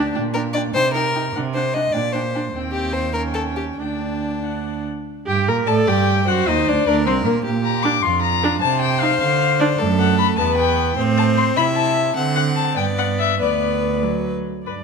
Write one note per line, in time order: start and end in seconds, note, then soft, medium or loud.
0.00 0.15 D4 medium
0.14 0.67 A#2 medium
0.14 0.23 D4 medium
0.14 0.22 G5 medium
0.34 0.43 D4 medium
0.34 0.42 A#4 medium
0.34 0.43 G5 medium
0.53 0.63 D4 medium
0.53 0.61 D5 loud
0.53 0.63 G5 medium
0.74 1.27 C3 medium
0.74 0.83 D#4 medium
0.74 0.93 C5 loud
0.74 0.83 G5 medium
0.94 1.02 D#4 medium
0.94 1.33 A#4 loud
0.94 1.03 G5 medium
1.15 1.23 D#4 medium
1.15 1.23 G5 medium
1.35 1.87 C3 medium
1.35 1.44 D4 medium
1.35 1.43 F#5 medium
1.54 1.63 D4 medium
1.54 1.75 C5 medium
1.54 1.63 F#5 medium
1.74 1.83 D4 medium
1.74 1.94 D#5 medium
1.74 1.82 F#5 medium
1.93 2.47 A#2 medium
1.93 2.02 D4 medium
1.93 2.14 D5 medium
1.93 2.02 G5 medium
2.13 2.22 D4 medium
2.13 2.54 C5 medium
2.13 2.22 G5 medium
2.35 2.43 D4 medium
2.35 2.43 G5 medium
2.54 3.76 D#2 medium
2.54 3.12 C4 medium
2.54 3.12 G5 medium
2.72 2.94 G4 medium
2.93 3.13 C5 medium
3.14 3.81 C#4 medium
3.14 3.22 A#4 medium
3.14 3.79 G5 medium
3.34 3.42 A4 medium
3.56 3.64 G4 medium
3.78 4.84 D2 medium
3.78 4.84 D4 medium
3.78 4.44 D4 medium
3.78 4.45 G5 medium
4.43 4.86 D4 medium
4.43 4.86 F#5 medium
5.27 5.49 G2 medium
5.27 5.50 G4 loud
5.27 5.46 G5 medium
5.48 5.67 A#2 medium
5.48 5.70 A#4 medium
5.48 5.56 A#5 loud
5.67 5.87 A2 loud
5.67 5.90 A4 loud
5.67 6.24 D5 medium
5.67 5.75 A5 loud
5.87 6.29 G2 medium
5.87 6.28 G4 loud
5.87 6.29 G5 loud
6.27 6.47 F#2 loud
6.27 6.50 F#4 loud
6.27 6.89 C5 medium
6.27 6.49 F#5 loud
6.47 6.67 D#2 medium
6.47 6.70 D#4 loud
6.47 6.69 D#5 loud
6.68 6.76 D2 medium
6.68 6.87 D4 loud
6.68 6.86 D5 loud
6.86 7.08 D2 medium
6.86 7.07 D4 loud
6.86 7.44 A#4 medium
6.86 6.95 D5 loud
7.06 7.27 C2 medium
7.06 7.26 C4 medium
7.06 7.14 C5 medium
7.25 7.45 A#2 medium
7.25 7.45 A#3 medium
7.25 7.33 A#4 medium
7.45 7.94 A#2 medium
7.45 8.06 G4 medium
7.64 7.84 A#5 loud
7.83 7.93 D4 medium
7.83 8.04 D6 loud
8.02 8.52 F2 medium
8.02 8.61 F4 medium
8.02 8.21 C6 loud
8.22 8.61 A#5 loud
8.43 8.52 D4 medium
8.61 9.11 C3 loud
8.61 9.81 C5 loud
8.61 8.81 A5 loud
8.81 9.02 G5 loud
9.00 9.10 D#4 medium
9.00 9.19 F5 loud
9.20 9.69 D3 medium
9.20 9.61 F5 loud
9.60 9.69 D4 loud
9.60 9.79 D5 loud
9.79 10.35 F#2 loud
9.79 10.40 A3 medium
9.79 10.38 A4 medium
9.99 10.18 F#5 medium
10.18 10.26 B5 loud
10.38 10.96 E2 medium
10.38 10.98 B3 medium
10.38 10.96 B4 loud
10.38 10.56 A5 loud
10.57 10.96 G5 loud
10.97 11.55 A2 loud
10.97 11.59 C4 medium
10.97 11.58 C5 loud
11.17 11.25 A5 loud
11.37 11.45 C6 loud
11.57 12.15 C3 medium
11.57 12.16 E4 medium
11.57 12.16 E5 loud
11.57 11.64 B5 loud
11.76 12.15 A5 medium
12.16 12.73 D3 loud
12.16 12.78 C4 medium
12.16 12.76 F#5 medium
12.36 12.44 F#5 loud
12.56 12.76 A5 loud
12.76 13.42 G2 medium
12.76 13.39 B3 medium
12.76 13.39 D5 medium
12.76 12.85 G5 medium
12.98 13.06 F#5 loud
13.19 13.40 E5 loud
13.40 14.46 D2 medium
13.40 14.04 B3 medium
13.40 14.33 B4 medium
13.40 14.03 D5 medium
14.03 14.45 F#3 medium
14.64 14.84 G2 soft
14.64 14.84 D4 soft
14.64 14.74 B4 medium
14.64 14.84 D5 medium